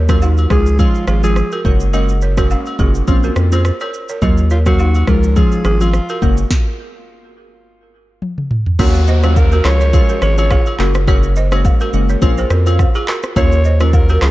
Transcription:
Already playing: D#2
0.09 F#3 A#3 C#4 F4 F#4 A#4, kick, cross-stick, high agogo, shaker
0.22 D#4 F#4, low woodblock, shaker
0.37 high agogo, shaker
0.50 C#2 F3 G#3 C#4 F4 G#4, kick, cross-stick, shaker
0.66 shaker
0.79 F3 G#3 C#4 F4, kick, high agogo, shaker
0.95 shaker
1.07 G#1 F4 G#4, cross-stick, shaker
1.23 F3 G#3 C#4 F4 G#4, high agogo, shaker
1.36 cross-stick, shaker
1.52 F#4 A#4, high agogo, shaker
1.64 F#1 G#3 A#3 C#4 F#4 A#4, kick, shaker
1.80 shaker
1.93 G#3 A#3 C#4 F#4 A#4 D#5, high agogo, shaker
2.09 shaker
2.21 A#4 C#5, shaker
2.37 G#3 A#3 C#4 F#4 A#4, kick, cross-stick, high agogo, shaker
2.50 C#4 F#4, low woodblock, shaker
2.66 high agogo, shaker
2.79 F#1 G#3 A#3 C#4 F4 F#4 G#4, kick, shaker
2.95 shaker
3.07 A#1 A#3 C4 C#4 F4, kick, high agogo, shaker
3.23 F#4 A#4, shaker
3.36 F2, cross-stick, shaker
3.52 A#3 C4 C#4 F4 G#4 C5, high agogo, shaker
3.65 cross-stick, shaker
3.80 A#4 C#5, high agogo, shaker
3.94 shaker
4.09 A#4 C#5, shaker
4.22 D#2 F#3 A#3 C#4 F4 A#4 D#5, kick, high agogo, shaker
4.37 shaker
4.50 F4 A#4 C#5, shaker
4.66 F#3 A#3 C#4 F#4 A#4 F5, kick, cross-stick, high agogo, shaker
4.79 D#4 F#4, low woodblock, shaker
4.95 high agogo, shaker
5.07 C#2 F3 G#3 C#4 F4 G#4 A#4, kick, cross-stick, shaker
5.23 shaker
5.36 F3 G#3 C#4 F4 G#4, kick, high agogo, shaker
5.52 shaker
5.65 G#1 F4 G#4, cross-stick, shaker
5.80 F3 G#3 C#4 F4, high agogo, shaker
5.93 cross-stick, shaker
6.09 F#4 A#4, high agogo, shaker
6.22 F#1 G#3 A#3 C#4 F#4 A#4, kick, shaker
6.37 shaker
6.51 kick, snare
8.22 high tom
8.38 mid tom
8.51 mid tom
8.66 floor tom
8.79 D#2 F#3 A#3 C#4 F4 F#4 A#4 C#5, kick, crash, downlifter, high agogo, shaker
8.95 shaker
9.07 C5 D#5, shaker
9.23 F#3 A#3 C#4 F4, cross-stick, high agogo, shaker
9.36 A#4, kick, low woodblock, shaker
9.52 F#4 A#4, high agogo, shaker
9.64 C#2 F3 G#3 C#4 F4 C#5, cross-stick, clap, shaker
9.80 A#4 C#5, shaker
9.93 F3 G#3 C#4 F4, kick, high agogo, shaker
10.09 F#4 A#4, shaker
10.22 G#1 F4 G#4 C#5, cross-stick, shaker
10.37 F3 G#3 C#4 F4 C#5, high agogo, shaker
10.51 F4 G#4, kick, cross-stick, low woodblock, shaker
10.66 high agogo, shaker
10.79 F#1 G#3 A#3 C#4 F#4 A#4, clap
10.94 cross-stick, shaker
11.07 G#3 A#3 C#4 F#4 A#4 C#5, kick, high agogo, shaker
11.23 shaker
11.36 C5 D#5, shaker
11.52 G#3 A#3 C#4 F#4, cross-stick, high agogo, shaker
11.65 kick, low woodblock, shaker
11.80 F#4 A#4, high agogo, shaker
11.93 F#1 G#3 A#3 C#4 F#4, shaker
12.09 A#4 C#5, shaker
12.22 A#1 A#3 C4 C#4 F4, kick, high agogo, shaker
12.38 G#4 C5, shaker
12.50 F2 F#4 A#4, cross-stick, shaker
12.66 A#3 C4 C#4 F4, high agogo, shaker
12.79 kick, cross-stick, low woodblock, shaker
12.95 F4 G#4, high agogo, shaker
13.08 F#4 A#4, clap
13.23 cross-stick, shaker
13.36 D#2 F#3 A#3 C#4 F4 A#4 C#5, kick, high agogo, shaker
13.52 shaker
13.64 C5 D#5, shaker
13.80 F#3 A#3 C#4 F4 A#4, cross-stick, high agogo, shaker
13.93 A#4, kick, low woodblock, shaker
14.09 F#4 A#4, high agogo, shaker
14.22 C#2 F3 G#3 C#4 F4 G#4, cross-stick, clap, shaker

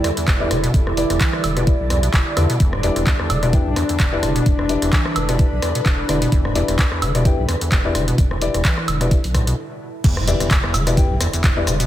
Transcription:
Already playing: D3 G3 E4 A4 D5
0.04 E2, cross-stick, open hi-hat
0.17 E2, closed hi-hat
0.27 E1 E2, kick, cross-stick, clap, closed hi-hat
0.40 E2 E4 G4 B4 D5
0.51 E1 D3, cross-stick, open hi-hat
0.63 B2, closed hi-hat
0.74 E1 E2, kick, closed hi-hat
0.87 E2, cross-stick
0.97 E4 G4 B4 D5, open hi-hat
1.10 E1 E2, cross-stick, closed hi-hat
1.20 E3, kick, clap, closed hi-hat
1.33 cross-stick
1.44 E1 D3, open hi-hat, high woodblock
1.57 B2 E4 G4 B4 D5, cross-stick, closed hi-hat
1.67 kick, closed hi-hat
1.80 B1
1.90 E2, cross-stick, open hi-hat
2.03 B2, closed hi-hat
2.14 E1, kick, cross-stick, clap, closed hi-hat
2.37 E2 D3 E4 G4 B4 D5, cross-stick, open hi-hat, high woodblock
2.50 B2, closed hi-hat
2.60 E1 E2 D4, kick, closed hi-hat
2.73 A2, cross-stick
2.83 E2 E4 G4 B4 D5, open hi-hat
2.96 E1 E2 B4, cross-stick, closed hi-hat
3.06 E2, kick, clap, closed hi-hat
3.19 E2, cross-stick
3.30 E1 D3, open hi-hat, high woodblock
3.43 B2 E4 G4 B4 D5, cross-stick, closed hi-hat
3.53 E2 E4 G4 B4 G5, kick, closed hi-hat
3.66 B1 A2
3.76 E2, cross-stick, open hi-hat
3.89 E2, closed hi-hat
4.00 E1 E2, kick, cross-stick, clap, closed hi-hat
4.12 E2 E4 G4 B4 D5
4.23 E1 D3, cross-stick, open hi-hat
4.36 B2, closed hi-hat
4.46 E1 E2, kick, closed hi-hat
4.59 E2, cross-stick
4.69 E4 G4 B4 D5, open hi-hat
4.82 E1 E2, cross-stick, closed hi-hat
4.93 E3, kick, clap, closed hi-hat
5.05 cross-stick
5.16 E1 D3, open hi-hat, high woodblock
5.29 B2 E4 G4 B4 D5, cross-stick, closed hi-hat
5.39 kick, closed hi-hat
5.52 B1
5.62 E2, cross-stick, open hi-hat
5.75 B2, closed hi-hat
5.86 E1, kick, cross-stick, clap, closed hi-hat
6.09 E1 D3 E4 G4 B4 D5, cross-stick, open hi-hat
6.22 B2, closed hi-hat
6.32 E1 E2, kick, closed hi-hat
6.45 A2, cross-stick
6.55 E2 E4 G4 B4 D5, open hi-hat
6.68 E1 E2, cross-stick, closed hi-hat
6.79 kick, clap, closed hi-hat
6.92 E2, cross-stick
7.02 E1 D3, open hi-hat, high woodblock
7.15 B2 E4 G4 B4 D5, cross-stick, closed hi-hat
7.25 E2 E4 G4 B4 G5, kick, closed hi-hat
7.38 B1 A2
7.49 E2, cross-stick, open hi-hat
7.61 E2, closed hi-hat
7.72 E1 E2, kick, cross-stick, clap, closed hi-hat
7.85 E2 E4 G4 B4 D5
7.95 E1 D3, cross-stick, open hi-hat
8.08 B2, closed hi-hat
8.18 E1 E2, kick, closed hi-hat
8.31 E2, cross-stick
8.41 E4 G4 B4 D5, open hi-hat
8.54 E1 E2, cross-stick, closed hi-hat
8.65 E3, kick, clap, closed hi-hat
8.78 cross-stick
8.88 E1 D3, open hi-hat, high woodblock
9.01 B2 E4 G4 B4 D5, cross-stick, closed hi-hat
9.11 kick, closed hi-hat
9.24 B1, open hi-hat
9.34 A2, kick, cross-stick, open hi-hat
9.47 B2, closed hi-hat
10.04 E1 E2 D3 G3 E4, kick, closed hi-hat, crash, impact, shaker
10.17 A2, cross-stick
10.27 E2 E4 G4 A4 B4 D5, open hi-hat, shaker
10.40 E1 E2, cross-stick, closed hi-hat, shaker
10.51 E2, kick, clap, closed hi-hat, shaker
10.57 D5
10.63 E2, cross-stick
10.74 E1 D3, open hi-hat, high woodblock, shaker
10.87 B2 E4 G4 B4 D5, cross-stick, closed hi-hat, shaker
10.97 E2 E4 G4 B4 G5, kick, closed hi-hat, shaker
11.10 B1 A2
11.20 E2, cross-stick, open hi-hat, shaker
11.33 E2, closed hi-hat, shaker
11.44 E1, kick, cross-stick, clap, closed hi-hat, shaker
11.56 E2 E4 G4 B4 D5
11.67 E1 D3, cross-stick, open hi-hat, shaker
11.80 B2, closed hi-hat, shaker

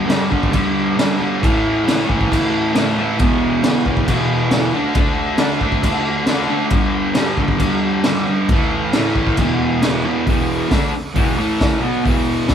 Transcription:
0.06 G2 D3 G3, snare, crash
0.30 G2 D3 G3, kick
0.43 kick
0.52 G2 D3 G3, kick, crash
0.97 G2 D3 G3, snare, crash
1.20 G2 D3 G3
1.41 A2 E3 A3, kick, crash
1.84 A2 E3 A3
1.88 snare, crash
2.06 A2 E3 A3, kick
2.21 kick
2.30 A2 E3 A3, kick, crash
2.73 A2 E3 A3, snare, crash
2.97 A2 E3 A3
3.18 E2 B2 E3, kick, crash
3.63 E2 B2 E3, snare, crash
3.86 E2 B2 E3, kick
3.97 kick
4.06 E2 B2 E3, kick, crash
4.51 E2 B2 E3, snare, crash
4.73 D3 A3 D4
4.95 D3 A3 D4, kick, crash
5.38 D3 A3 D4, snare, crash
5.60 D3 A3 D4, kick
5.72 kick
5.83 D3 A3 D4, kick, crash
6.26 D3 A3 D4, snare, crash
6.48 D3 A3 D4
6.70 G2 D3 G3, kick, crash
7.14 G2 D3 G3, snare, crash
7.37 G2 D3 G3, kick
7.48 kick
7.58 G2 D3 G3, kick, crash
8.04 G2 D3 G3, snare, crash
8.27 G2 D3 G3
8.49 A2 E3 A3, kick, crash
8.93 A2 E3 A3, snare, crash
9.15 A2 E3 A3, kick
9.27 kick
9.37 E2 B2 E3, kick, crash
9.82 E2 B2 E3, snare, crash
10.05 E2 B2 E3
10.27 E2 B2 E3, kick, open hi-hat
10.70 D3 A3 D4, kick, snare, open hi-hat
10.93 muted distorted electric guitar stroke
11.15 E2 B2 E3, kick, open hi-hat
11.36 A2 E3 A3
11.61 kick, snare, open hi-hat
11.80 B2 F#3 B3
12.04 E2 B2 E3, kick, open hi-hat
12.48 D3 A3 D4, kick, snare, open hi-hat

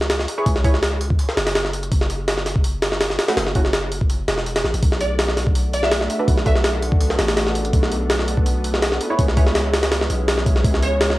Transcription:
Already playing: C#2
0.01 snare
0.10 snare, open hi-hat
0.20 snare
0.28 open hi-hat
0.38 E4 G#4 B4 C#5
0.46 C#2, kick, open hi-hat
0.56 snare
0.64 E4 G#4 B4 C#5, kick, open hi-hat
0.74 snare
0.83 snare, open hi-hat
1.01 open hi-hat
1.10 kick
1.19 open hi-hat
1.29 snare
1.37 F#1, snare, open hi-hat
1.47 snare, open hi-hat
1.55 snare, open hi-hat
1.65 snare
1.73 open hi-hat
1.83 closed hi-hat
1.92 F#1, kick, open hi-hat
2.01 snare
2.10 open hi-hat
2.28 snare, open hi-hat
2.38 snare
2.46 snare, open hi-hat
2.56 kick
2.64 open hi-hat
2.82 snare, open hi-hat
2.92 snare
3.01 snare, open hi-hat
3.10 snare
3.19 snare, open hi-hat
3.28 A3 C#4 E4 F#4, snare, open hi-hat
3.37 F#1, snare, open hi-hat
3.47 snare
3.55 A3 C#4 E4 F#4, kick, open hi-hat
3.65 snare
3.73 snare, open hi-hat
3.92 open hi-hat
4.01 kick
4.10 open hi-hat
4.28 E1, snare, open hi-hat
4.38 snare
4.46 open hi-hat
4.56 snare, open hi-hat
4.64 A1, snare
4.74 A1, open hi-hat
4.82 B1 A3 B3 D4 F#4, kick, open hi-hat
4.92 snare
5.00 D5, open hi-hat
5.19 snare, open hi-hat
5.28 snare
5.37 snare, open hi-hat
5.47 kick
5.55 open hi-hat
5.73 D5, open hi-hat
5.83 E5, snare
5.91 snare, open hi-hat
6.01 snare
6.10 open hi-hat
6.19 D4 F#4 A4 B4
6.28 B1, kick, open hi-hat
6.38 snare
6.46 D4 F#4 A4 B4 E5, kick, open hi-hat
6.56 snare
6.64 snare, open hi-hat
6.83 open hi-hat
6.92 kick
7.01 open hi-hat
7.10 snare
7.19 A1, snare, open hi-hat
7.29 snare, open hi-hat
7.37 snare, open hi-hat
7.47 snare
7.55 open hi-hat
7.65 closed hi-hat
7.73 B1, kick, open hi-hat
7.83 snare
7.92 open hi-hat
8.10 snare, open hi-hat
8.19 snare
8.28 open hi-hat
8.37 kick
8.46 open hi-hat
8.64 open hi-hat
8.74 snare
8.82 snare, open hi-hat
8.92 snare
9.01 open hi-hat
9.10 E4 G#4 B4 C#5
9.18 C#2 G#3 C#4 E4, kick, open hi-hat
9.28 snare
9.37 E4 G#4 B4 C#5, kick, open hi-hat
9.47 snare
9.55 snare, open hi-hat
9.74 snare, open hi-hat
9.83 snare, open hi-hat
9.92 snare, open hi-hat
10.01 snare
10.10 B1, open hi-hat
10.28 snare, open hi-hat
10.38 snare
10.46 kick, open hi-hat
10.56 snare
10.64 C#2, kick, open hi-hat
10.74 snare
10.83 C#5, open hi-hat
11.01 snare, open hi-hat
11.10 snare

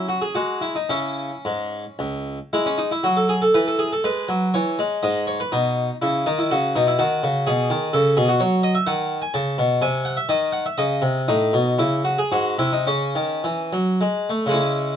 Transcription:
Already playing: F#3 C#4
0.09 F#4
0.22 G#4
0.35 G#3 F#4
0.61 E4
0.75 D#4
0.89 C#3 C#4 E4
1.45 G#2
1.99 C#2
2.53 G#3 E4
2.66 C#4
2.78 D#4
2.91 E4
3.04 F#3 F#4
3.17 A4
3.29 G#4
3.42 A4
3.54 E3 B4
3.68 A4
3.79 G#4
3.93 A4
4.04 G#3 B4
4.29 F#3
4.54 E3 C#5
4.79 G#3
5.03 G#2 D#5
5.27 C#5
5.40 B4
5.52 B2 D#4
6.02 C#3 E4
6.26 D#3 D#4
6.39 E4
6.51 C#3 F#4
6.76 B2 D#4
6.87 E4
6.99 D#3 F#4
7.23 C#3
7.47 B2 G#4
7.70 D#3
7.93 C#3 A4
8.17 B2 G#4
8.28 F#4
8.40 F#3 C#5
8.63 D#5
8.75 E5
8.87 D#3 F#5
9.22 G#5
9.34 C#3 A5
9.58 B2
9.82 C3 G#5
10.05 F#5
10.17 E5
10.29 D#3 D#5
10.52 F#5
10.66 E5
10.78 C#3 D#5
11.02 C3
11.28 A2 D#4
11.53 B2
11.78 C#3 E4
12.04 F#4
12.18 G#4
12.32 G#2 F#4
12.59 C3 E4
12.73 D#4
12.87 C#3 C#4
13.15 D#3
13.44 E3
13.73 F#3
14.01 G#3
14.30 A3
14.46 C#3 G#3
14.51 C#4 E4

